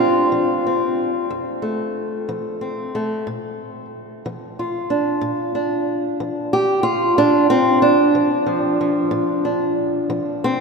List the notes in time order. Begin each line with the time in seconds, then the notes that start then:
Already playing: A3 C4 F4
0.32 F3
0.67 C4
1.30 F2
1.62 A3
2.29 F3
2.61 C4
2.95 A3
3.27 A#2
4.26 F3
4.59 F4
4.90 D4
5.21 A#2
5.55 D4
6.20 F3
6.53 G4
6.83 F4
7.18 A#2 D4
7.50 C4
7.82 D4
8.15 F3
8.46 F3
8.81 F3
9.11 A#2
9.45 D4
10.10 F3
10.44 C4